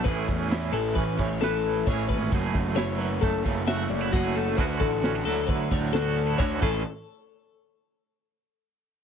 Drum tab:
CC |----------|----------|---------x|----------|
HH |xxxxxxxxxx|xxxxxxxxxx|xxxxxxxxx-|----------|
SD |--o--oo--o|--o---o--o|--o--ooo--|----------|
BD |oo--oo--oo|oo--oo--o-|oo--oo--oo|----------|